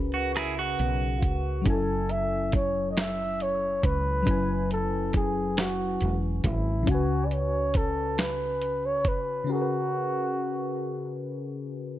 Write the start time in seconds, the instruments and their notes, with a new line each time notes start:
Already playing: fretless electric bass C#2, fm electric piano C#3 C#4 F#4 G#4 A#4 B4
0.14 clean electric guitar F#4
0.36 clean electric guitar E4 G#4, cross-stick, closed hi-hat
0.59 clean electric guitar F#4
0.79 fretless electric bass B1, closed hi-hat
1.17 flugelhorn F4
1.22 fretless electric bass C#2, flugelhorn F#4, kick, closed hi-hat
1.62 fm electric piano F#3 C#4, closed hi-hat
1.66 fretless electric bass F#1, fm electric piano E4, flugelhorn A4, kick
1.70 fm electric piano A4 G#5
2.09 flugelhorn E5, closed hi-hat
2.52 flugelhorn C#5, kick, closed hi-hat
2.91 flugelhorn D#5
2.97 flugelhorn E5, snare, closed hi-hat
3.40 flugelhorn C#5, closed hi-hat
3.83 fretless electric bass C#2, flugelhorn B4, kick, closed hi-hat
4.22 fm electric piano F#3 C#4
4.27 fretless electric bass F#1, fm electric piano E4 G#5, kick, closed hi-hat
4.33 fm electric piano B4
4.71 flugelhorn A4, closed hi-hat
5.13 flugelhorn G#4, kick, closed hi-hat
5.57 flugelhorn F#4, snare, closed hi-hat
6.01 fretless electric bass E1, closed hi-hat
6.44 fretless electric bass G#1, flugelhorn E4, kick, closed hi-hat
6.83 fm electric piano C#3 C#4
6.87 fretless electric bass C#2, fm electric piano F#4, flugelhorn F#4, kick, closed hi-hat
6.91 fm electric piano B4 G#5
7.26 flugelhorn D5
7.31 flugelhorn C#5, closed hi-hat
7.74 flugelhorn A4, kick, closed hi-hat
8.18 flugelhorn B4, snare, closed hi-hat
8.62 closed hi-hat
8.86 flugelhorn C#5
9.05 fretless electric bass G#1, flugelhorn B4, kick, closed hi-hat
9.44 fm electric piano C#3 C#4
9.49 fm electric piano F#4 G#4, flugelhorn F#4
9.55 fm electric piano A#4
9.62 fm electric piano B4